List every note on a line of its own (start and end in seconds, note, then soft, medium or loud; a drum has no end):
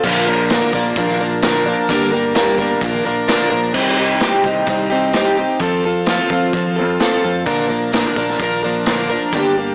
0.03 0.61 A#1 loud
0.03 0.28 A#2 medium
0.03 0.28 D3 medium
0.03 0.28 F3 medium
0.03 0.28 A#3 medium
0.03 0.27 D4 medium
0.03 0.26 A#4 medium
0.03 kick loud
0.03 crash loud
0.27 0.50 F3 soft
0.27 0.50 A#3 medium
0.27 0.51 D4 medium
0.27 0.51 A#4 medium
0.50 0.74 A#2 medium
0.50 0.74 D3 medium
0.50 0.74 F3 medium
0.50 0.74 A#3 medium
0.50 0.73 D4 medium
0.50 0.73 A#4 medium
0.50 snare loud
0.50 closed hi-hat medium
0.73 0.93 A#1 medium
0.73 0.96 F3 medium
0.73 0.97 A#3 medium
0.73 0.98 D4 medium
0.73 0.97 A#4 medium
0.73 kick medium
0.96 1.73 A#1 medium
0.96 1.21 F3 medium
0.96 1.21 A#3 medium
0.96 1.20 D4 medium
0.96 1.19 A#4 medium
0.96 kick loud
0.96 closed hi-hat medium
1.08 snare soft
1.21 1.42 F3 soft
1.21 1.42 A#3 medium
1.21 1.42 D4 medium
1.21 1.43 A#4 medium
1.42 1.66 A#2 medium
1.42 1.66 D3 medium
1.42 1.67 F3 medium
1.42 1.66 A#3 medium
1.42 1.65 D4 loud
1.42 1.65 A#4 loud
1.42 snare loud
1.42 closed hi-hat medium
1.66 1.90 F3 soft
1.66 1.89 A#3 medium
1.66 1.89 D4 medium
1.66 1.89 A#4 medium
1.89 2.47 G1 loud
1.89 2.13 G2 medium
1.89 2.13 D3 medium
1.89 2.13 G3 medium
1.89 2.12 A#3 loud
1.89 2.11 D4 loud
1.89 2.11 A#4 medium
1.89 kick loud
1.89 closed hi-hat medium
2.12 2.34 G3 soft
2.12 2.34 A#3 soft
2.12 2.35 D4 medium
2.12 2.35 A#4 medium
2.34 2.58 G2 medium
2.34 2.59 D3 medium
2.34 2.59 G3 loud
2.34 2.59 A#3 medium
2.34 2.59 D4 medium
2.34 2.58 A#4 medium
2.34 snare loud
2.34 closed hi-hat medium
2.58 2.78 G1 medium
2.58 2.81 G3 medium
2.58 2.81 A#3 medium
2.58 2.83 D4 medium
2.58 2.82 A#4 medium
2.58 kick medium
2.81 3.01 A#1 medium
2.81 3.06 F3 medium
2.81 3.05 A#3 medium
2.81 3.05 D4 medium
2.81 3.04 A#4 medium
2.81 kick loud
2.81 closed hi-hat medium
3.05 3.25 A#1 medium
3.05 3.27 F3 medium
3.05 3.27 A#3 medium
3.05 3.27 D4 medium
3.05 3.28 A#4 medium
3.28 3.52 A#2 medium
3.28 3.52 D3 medium
3.28 3.51 F3 loud
3.28 3.51 A#3 loud
3.28 3.50 D4 loud
3.28 3.49 A#4 loud
3.28 snare loud
3.28 closed hi-hat medium
3.50 3.72 A#1 medium
3.50 3.74 F3 medium
3.50 3.73 A#3 medium
3.50 3.74 D4 medium
3.50 3.74 A#4 medium
3.73 4.32 C2 medium
3.73 3.98 C3 medium
3.73 3.98 G3 medium
3.73 3.97 C4 medium
3.73 3.97 D#4 medium
3.73 3.95 G4 medium
3.73 kick loud
3.73 crash loud
3.97 4.21 C4 soft
3.97 4.21 D#4 soft
3.97 4.21 G4 medium
4.20 4.45 C3 medium
4.20 4.45 G3 medium
4.20 4.45 C4 medium
4.20 4.45 D#4 medium
4.20 4.43 G4 medium
4.20 snare loud
4.20 closed hi-hat medium
4.44 4.64 C2 medium
4.44 4.68 C4 soft
4.44 4.69 D#4 medium
4.44 4.68 G4 medium
4.44 kick medium
4.67 5.44 C2 medium
4.67 4.92 G3 medium
4.67 4.91 C4 medium
4.67 4.90 D#4 medium
4.67 4.89 G4 medium
4.67 kick loud
4.67 closed hi-hat medium
4.90 5.13 C4 medium
4.90 5.13 D#4 medium
4.90 5.13 G4 medium
5.13 5.37 C3 medium
5.13 5.37 G3 medium
5.13 5.38 C4 medium
5.13 5.37 D#4 loud
5.13 5.36 G4 medium
5.13 snare loud
5.13 closed hi-hat medium
5.37 5.59 C4 soft
5.37 5.61 D#4 soft
5.37 5.61 G4 medium
5.59 6.18 F2 loud
5.59 5.84 F3 medium
5.59 5.84 C4 medium
5.59 5.84 F4 medium
5.59 5.84 A4 medium
5.59 kick loud
5.59 closed hi-hat medium
5.85 6.07 C4 soft
5.85 6.08 F4 medium
5.85 6.08 A4 medium
6.06 6.32 F3 medium
6.06 6.31 C4 medium
6.06 6.30 F4 medium
6.06 6.29 A4 medium
6.06 snare loud
6.06 closed hi-hat medium
6.30 6.49 F2 medium
6.30 6.54 C4 medium
6.30 6.54 F4 medium
6.30 6.54 A4 medium
6.30 kick medium
6.53 6.79 F3 medium
6.53 6.78 F3 medium
6.53 6.77 C4 medium
6.53 6.76 F4 medium
6.53 6.75 A4 medium
6.53 kick loud
6.53 closed hi-hat medium
6.76 6.97 F2 medium
6.76 6.99 C4 soft
6.76 7.00 F4 soft
6.76 7.00 A4 medium
7.00 7.24 F3 medium
7.00 7.24 C4 medium
7.00 7.23 F4 medium
7.00 7.21 A4 loud
7.00 snare loud
7.00 closed hi-hat medium
7.23 7.43 F2 loud
7.23 7.46 C4 soft
7.23 7.46 F4 soft
7.23 7.46 A4 medium
7.46 8.04 A#1 medium
7.46 7.70 A#2 medium
7.46 7.70 D3 medium
7.46 7.69 F3 medium
7.46 7.69 A#3 medium
7.46 7.67 D4 medium
7.46 7.67 A#4 loud
7.46 kick loud
7.46 closed hi-hat medium
7.68 7.91 F3 soft
7.68 7.92 A#3 soft
7.68 7.92 D4 medium
7.68 7.92 A#4 medium
7.92 8.16 A#2 medium
7.92 8.16 D3 medium
7.92 8.16 F3 medium
7.92 8.17 A#3 medium
7.92 8.16 D4 medium
7.92 8.15 A#4 medium
7.92 snare loud
7.92 closed hi-hat medium
8.16 8.36 A#1 medium
8.16 8.39 F3 soft
8.16 8.40 A#3 medium
8.16 8.40 D4 medium
8.16 8.40 A#4 medium
8.16 kick medium
8.29 snare soft
8.39 9.16 A#1 medium
8.39 8.63 F3 medium
8.39 8.64 A#3 medium
8.39 8.63 D4 medium
8.39 8.62 A#4 medium
8.39 kick loud
8.39 closed hi-hat medium
8.63 8.86 F3 soft
8.63 8.85 A#3 soft
8.63 8.86 D4 medium
8.63 8.86 A#4 medium
8.86 9.09 A#2 medium
8.86 9.10 D3 medium
8.86 9.10 F3 medium
8.86 9.10 A#3 loud
8.86 9.10 D4 medium
8.86 9.08 A#4 loud
8.86 snare loud
8.86 closed hi-hat medium
9.10 9.33 F3 soft
9.10 9.33 A#3 soft
9.10 9.34 D4 medium
9.10 9.33 A#4 medium
9.33 9.75 G1 loud
9.33 9.57 G2 medium
9.33 9.57 D3 medium
9.33 9.57 G3 medium
9.33 9.57 A#3 medium
9.33 9.56 D4 medium
9.33 9.56 G4 medium
9.33 kick medium
9.33 closed hi-hat medium
9.57 9.75 G3 soft
9.57 9.75 A#3 soft
9.57 9.75 D4 soft
9.57 9.75 G4 medium